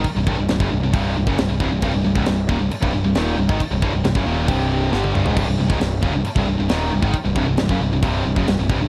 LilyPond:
<<
  \new Staff \with { instrumentName = "Distorted electric guitar" } { \clef bass \time 4/4 \key c \minor \tempo 4 = 135 r16 <c, g,>16 <c, g,>16 <c, g,>16 <c, g,>16 <fis, des>16 <c, g,>16 <c, g,>16 <c, g, c>8 <c, g,>16 <fis, des>16 <c, g,>16 <c, g,>16 <c, g,>16 <c, g,>16 | <c, g,>16 <c, g,>16 <c, g,>16 <des, aes,>16 <c, g,>8 <ees, bes,>16 <c, g,>16 r16 <c, g,>16 <c, g,>16 <c, g,>16 <ees, bes, ees>8 <c, g,>16 <aes, ees>16 | r16 <c, g,>16 <c, g,>16 <c, g,>16 <c, g,>16 <fis, des>16 <ees, bes, ees>8 <c, g, c>4 <g, d g>8 <c, g,>16 <des, aes,>16 | <c, g,>16 <c, g,>16 <c, g,>16 <des, aes,>16 <c, g,>8 <ees, bes,>16 <c, g,>16 r16 <c, g,>16 <c, g,>16 <c, g,>16 <ees, bes, ees>8 <c, g,>16 <aes, ees>16 |
r16 <c, g,>16 <c, g,>16 <c, g,>16 <c, g,>16 <fis, des>16 <c, g,>16 <c, g,>16 <c, g, c>8 <c, g,>16 <fis, des>16 <c, g,>16 <c, g,>16 <c, g,>16 <c, g,>16 | }
  \new Staff \with { instrumentName = "Distorted electric guitar" } { \clef bass \time 4/4 \key c \minor r16 <c, g,>16 <c, g,>16 <c, g,>16 <c, g,>16 <fis, des>16 <c, g,>16 <c, g,>16 <c, g, c>8 <c, g,>16 <fis, des>16 <c, g,>16 <c, g,>16 <c, g,>16 <c, g,>16 | <c, g,>16 <c, g,>16 <c, g,>16 <des, aes,>16 <c, g,>8 <ees, bes,>16 <c, g,>16 r16 <c, g,>16 <c, g,>16 <c, g,>16 <ees, bes, ees>8 <c, g,>16 <aes, ees>16 | r16 <c, g,>16 <c, g,>16 <c, g,>16 <c, g,>16 <fis, des>16 <ees, bes, ees>8 <c, g, c>4 <g, d g>8 <c, g,>16 <des, aes,>16 | <c, g,>16 <c, g,>16 <c, g,>16 <des, aes,>16 <c, g,>8 <ees, bes,>16 <c, g,>16 r16 <c, g,>16 <c, g,>16 <c, g,>16 <ees, bes, ees>8 <c, g,>16 <aes, ees>16 |
r16 <c, g,>16 <c, g,>16 <c, g,>16 <c, g,>16 <fis, des>16 <c, g,>16 <c, g,>16 <c, g, c>8 <c, g,>16 <fis, des>16 <c, g,>16 <c, g,>16 <c, g,>16 <c, g,>16 | }
  \new Staff \with { instrumentName = "Overdriven electric guitar" } { \clef bass \time 4/4 \key c \minor r16 <c, g,>16 <c, g,>16 <c, g,>16 <c, g,>16 <fis, des>16 <c, g,>16 <c, g,>16 <c, g, c>8 <c, g,>16 <fis, des>16 <c, g,>16 <c, g,>16 <c, g,>16 <c, g,>16 | <c, g,>16 <c, g,>16 <c, g,>16 <des, aes,>16 <c, g,>8 <ees, bes,>16 <c, g,>16 r16 <c, g,>16 <c, g,>16 <c, g,>16 <ees, bes, ees>8 <c, g,>16 <aes, ees>16 | r16 <c, g,>16 <c, g,>16 <c, g,>16 <c, g,>16 <fis, des>16 <ees, bes, ees>8 <c, g, c>4 <g, d g>8 <c, g,>16 <des, aes,>16 | <c, g,>16 <c, g,>16 <c, g,>16 <des, aes,>16 <c, g,>8 <ees, bes,>16 <c, g,>16 r16 <c, g,>16 <c, g,>16 <c, g,>16 <ees, bes, ees>8 <c, g,>16 <aes, ees>16 |
r16 <c, g,>16 <c, g,>16 <c, g,>16 <c, g,>16 <fis, des>16 <c, g,>16 <c, g,>16 <c, g, c>8 <c, g,>16 <fis, des>16 <c, g,>16 <c, g,>16 <c, g,>16 <c, g,>16 | }
  \new Staff \with { instrumentName = "Picked electric bass" } { \clef bass \time 4/4 \key c \minor r16 c,,16 c,,16 c,,16 c,,16 fis,,16 c,,16 c,,16 c,,8 c,,16 fis,,16 c,,16 c,,16 c,,16 c,,16 | c,,16 c,,16 c,,16 des,,16 c,,8 ees,,16 c,,16 r16 c,,16 c,,16 c,,16 ees,,8 c,,16 aes,,16 | r16 c,,16 c,,16 c,,16 c,,16 fis,,16 ees,,8 c,,4 g,,8 c,,16 des,,16 | c,,16 c,,16 c,,16 des,,16 c,,8 ees,,16 c,,16 r16 c,,16 c,,16 c,,16 ees,,8 c,,16 aes,,16 |
r16 c,,16 c,,16 c,,16 c,,16 fis,,16 c,,16 c,,16 c,,8 c,,16 fis,,16 c,,16 c,,16 c,,16 c,,16 | }
  \new DrumStaff \with { instrumentName = "Drums" } \drummode { \time 4/4 <cymc bd>8 bd8 <cymc sn>16 bd8. <cymc bd>8. bd16 <cymc sn>8 bd8 | <cymc bd>8. bd16 <cymc sn>8 bd8 cymc16 bd8. <cymc sn>8. bd16 | <cymc bd>8 bd8 <cymc sn>16 bd8. <cymc bd>4 sn16 tommh16 toml16 tomfh16 | <cymc bd>8. bd16 <cymc sn>8 bd8 cymc16 bd8. <cymc sn>8. bd16 |
<cymc bd>8 bd8 <cymc sn>16 bd8. <cymc bd>8. bd16 <cymc sn>8 bd8 | }
>>